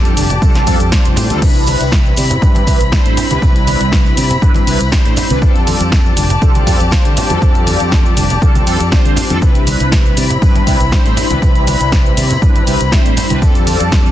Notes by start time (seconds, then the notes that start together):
Already playing: F2 G3 C4 D4 F4 G4 A4 D5 A5
0.05 closed hi-hat, tambourine, shaker
0.17 F1 G3 C4 D4 F4 D5, open hi-hat, tambourine, high conga, shaker
0.30 closed hi-hat, tambourine, low conga, shaker
0.42 G3 C4 D4 F4 A4, kick, tambourine, shaker
0.54 snare, closed hi-hat, tambourine, high conga, shaker
0.67 F2 G3 C4 D4 F4 A4, kick, open hi-hat, tambourine, shaker
0.80 F2, closed hi-hat, tambourine, shaker
0.92 G3 C4 D4 F4 C5, kick, snare, tambourine, high conga, shaker
1.04 F1, closed hi-hat, tambourine, shaker
1.16 A2, open hi-hat, tambourine, low conga, shaker
1.30 D2 G3 C4 D4 F4 A4, closed hi-hat, tambourine, high conga, shaker
1.41 G3 C4 D4 E4 B4 B5, kick, crash, tambourine, shaker
1.55 closed hi-hat, tambourine, shaker
1.66 open hi-hat, tambourine, high conga, shaker
1.80 C2, closed hi-hat, tambourine, shaker
1.92 kick, snare, tambourine, shaker
2.05 tambourine, shaker
2.16 C3 G3 C4 D4 E4 D5, open hi-hat, tambourine, high conga, shaker
2.30 closed hi-hat, tambourine, low conga, shaker
2.42 G2 G3 C4 D4 E4 B4, kick, tambourine, shaker
2.55 closed hi-hat, tambourine, high conga, shaker
2.67 C2 G3 C4 D4 E4 B4, kick, open hi-hat, tambourine, shaker
2.80 C2, closed hi-hat, tambourine, shaker
2.92 G3 C4 D4 E4 C5, kick, snare, tambourine, high conga, shaker
3.05 A2, closed hi-hat, tambourine, shaker
3.17 open hi-hat, tambourine, low conga, shaker
3.30 C2 G3 C4 D4 E4 B4, closed hi-hat, tambourine, high conga, shaker
3.41 C2 G3 C4 D4 E4 B4, kick, tambourine, shaker
3.56 closed hi-hat, tambourine, shaker
3.67 open hi-hat, tambourine, high conga, shaker
3.80 C2, closed hi-hat, tambourine, shaker
3.92 kick, snare, tambourine, shaker
4.05 tambourine, shaker
4.17 C3 G3 C4 D4 E4 D5, open hi-hat, tambourine, high conga, shaker
4.30 closed hi-hat, tambourine, low conga, shaker
4.42 G2 G3 C4 D4 E4 B4, kick, tambourine, shaker
4.54 closed hi-hat, tambourine, high conga, shaker
4.67 C2 G3 C4 D4 E4 B4, open hi-hat, tambourine, shaker
4.80 C2, closed hi-hat, tambourine, shaker
4.91 G3 C4 D4 E4 C5, kick, snare, tambourine, high conga, shaker
5.05 A2, closed hi-hat, tambourine, shaker
5.16 muted fingered electric bass stroke, open hi-hat, tambourine, low conga, shaker
5.30 C2 G3 C4 D4 E4 B4, closed hi-hat, tambourine, high conga, shaker
5.41 F2 G3 C4 D4 F4 G4 A4 D5 A5, kick, tambourine, shaker
5.56 closed hi-hat, tambourine, shaker
5.67 open hi-hat, tambourine, high conga, shaker
5.80 F2, closed hi-hat, tambourine, shaker
5.92 kick, snare, tambourine, shaker
6.06 tambourine, shaker
6.16 F1 G3 C4 D4 F4 D5, open hi-hat, tambourine, high conga, shaker
6.30 closed hi-hat, tambourine, low conga, shaker
6.42 C2 G3 C4 D4 F4 A4, kick, tambourine, shaker
6.55 closed hi-hat, tambourine, high conga, shaker
6.66 F2 G3 C4 D4 F4 A4, kick, open hi-hat, tambourine, shaker
6.80 F2, closed hi-hat, tambourine, shaker
6.91 G3 C4 D4 F4 C5, kick, snare, tambourine, high conga, shaker
7.05 D3, closed hi-hat, tambourine, shaker
7.17 open hi-hat, tambourine, low conga, shaker
7.30 F2 G3 C4 D4 F4 A4, closed hi-hat, tambourine, high conga, shaker
7.41 F2 G3 C4 D4 F4 A4, kick, tambourine, shaker
7.55 closed hi-hat, tambourine, shaker
7.67 open hi-hat, tambourine, high conga, shaker
7.80 F2, closed hi-hat, tambourine, shaker
7.91 kick, snare, tambourine, shaker
8.06 tambourine, shaker
8.16 F1 G3 C4 D4 F4 D5, open hi-hat, tambourine, high conga, shaker
8.30 closed hi-hat, tambourine, low conga, shaker
8.42 C2 G3 C4 D4 F4 A4, kick, tambourine, shaker
8.55 closed hi-hat, tambourine, high conga, shaker
8.67 F2 G3 C4 D4 F4 A4, open hi-hat, tambourine, shaker
8.80 F2, closed hi-hat, tambourine, shaker
8.92 G3 C4 D4 F4 C5, kick, snare, tambourine, high conga, shaker
9.05 D3, closed hi-hat, tambourine, shaker
9.16 open hi-hat, tambourine, low conga, shaker
9.30 F2 G3 C4 D4 F4 A4, closed hi-hat, tambourine, high conga, shaker
9.41 C2 G3 C4 D4 E4 B4 B5, kick, tambourine, shaker
9.55 closed hi-hat, tambourine, shaker
9.67 open hi-hat, tambourine, high conga, shaker
9.80 C2, closed hi-hat, tambourine, shaker
9.92 kick, snare, tambourine, shaker
10.06 tambourine, shaker
10.17 C3 G3 C4 D4 E4 D5, open hi-hat, tambourine, high conga, shaker
10.30 closed hi-hat, tambourine, low conga, shaker
10.42 G2 G3 C4 D4 E4 B4, kick, tambourine, shaker
10.55 closed hi-hat, tambourine, high conga, shaker
10.67 C2 G3 C4 D4 E4 B4, kick, open hi-hat, tambourine, shaker
10.80 C2, closed hi-hat, tambourine, shaker
10.92 G3 C4 D4 E4 C5, kick, snare, tambourine, high conga, shaker
11.05 A2, closed hi-hat, tambourine, shaker
11.17 open hi-hat, tambourine, low conga, shaker
11.30 C2 G3 C4 D4 E4 B4, closed hi-hat, tambourine, high conga, shaker
11.41 C2 G3 C4 D4 E4 B4, kick, tambourine, shaker
11.55 closed hi-hat, tambourine, shaker
11.67 open hi-hat, tambourine, high conga, shaker
11.81 C2, closed hi-hat, tambourine, shaker
11.92 kick, snare, tambourine, shaker
12.05 tambourine, shaker
12.17 C3 G3 C4 D4 E4 D5, open hi-hat, tambourine, high conga, shaker
12.31 closed hi-hat, tambourine, low conga, shaker
12.41 G2 G3 C4 D4 E4 B4, kick, tambourine, shaker
12.55 closed hi-hat, tambourine, high conga, shaker
12.67 C2 G3 C4 D4 E4 B4, open hi-hat, tambourine, shaker
12.80 C2, closed hi-hat, tambourine, shaker
12.92 G3 C4 D4 E4 C5, kick, snare, tambourine, high conga, shaker
13.05 A2, closed hi-hat, tambourine, shaker
13.17 muted fingered electric bass stroke, open hi-hat, tambourine, low conga, shaker
13.30 C2 G3 C4 D4 E4 B4, closed hi-hat, tambourine, high conga, shaker
13.41 F2 G3 C4 D4 F4 G4 A4 D5 A5, kick, tambourine, shaker
13.55 closed hi-hat, tambourine, shaker
13.67 open hi-hat, tambourine, high conga, shaker
13.80 F2, closed hi-hat, tambourine, shaker
13.92 kick, snare, tambourine, shaker
14.06 tambourine, shaker